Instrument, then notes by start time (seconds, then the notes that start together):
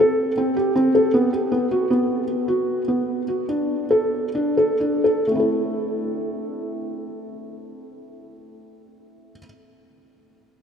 felt piano
0.00 A4
0.37 C4
0.56 G4
0.76 C4
0.95 A4
1.14 B3
1.33 G4
1.52 B3
1.71 F#4
1.90 B3
2.48 F#4
2.88 B3
3.28 F#4
3.49 D4
3.91 A4
4.35 D4
4.57 A4
4.80 D4
5.04 A4
5.27 A3
5.32 C4 E4
5.40 A4